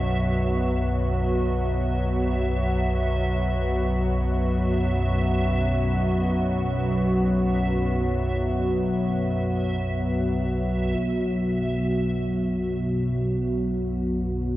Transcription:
0.00 10.97 B1 medium
0.00 10.97 F#2 medium
0.00 14.57 B2 medium
0.00 14.57 F#3 medium
0.00 14.57 B3 medium
0.00 14.57 F#4 medium
0.00 11.00 E5 medium
10.98 14.57 B1 medium
10.98 14.57 F#2 medium

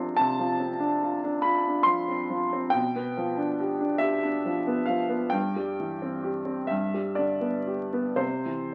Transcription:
0.00 0.12 C3 medium
0.00 0.39 F3 soft
0.00 0.60 C4 soft
0.00 0.80 D4 soft
0.00 1.03 F4 medium
0.00 0.16 C6 medium
0.16 2.73 C3 medium
0.16 1.47 A5 medium
0.39 0.74 F3 soft
0.60 0.95 C4 soft
0.80 1.16 D4 soft
1.03 1.38 F4 soft
1.24 1.59 D4 soft
1.42 1.80 F4 soft
1.42 1.88 B5 medium
1.68 2.03 D4 soft
1.83 2.23 F3 soft
1.83 2.73 C6 medium
2.08 2.44 C4 soft
2.30 2.66 F3 soft
2.53 2.75 C4 soft
2.70 5.29 B2 medium
2.70 4.01 G5 medium
2.96 3.31 B3 soft
3.17 3.52 F3 soft
3.37 3.73 D4 soft
3.60 3.95 G4 soft
3.80 4.16 D4 soft
3.98 4.37 G4 soft
3.98 4.88 E5 medium
4.23 4.59 D4 soft
4.45 4.81 F3 soft
4.67 5.03 B3 soft
4.86 5.25 F3 soft
4.86 5.32 F5 medium
5.10 5.33 B3 soft
5.30 6.66 G2 medium
5.30 6.69 G5 medium
5.56 5.92 G3 soft
5.80 6.16 E3 soft
6.02 6.39 C4 soft
6.24 6.61 G4 soft
6.45 6.70 C4 soft
6.67 8.16 G2 soft
6.67 7.17 E5 medium
6.94 7.33 G3 soft
7.15 7.58 D3 soft
7.15 8.19 D5 medium
7.41 7.83 B3 soft
7.67 8.10 G4 soft
7.93 8.20 B3 soft
8.16 8.74 C3 soft
8.16 8.74 C5 medium
8.45 8.74 E3 soft

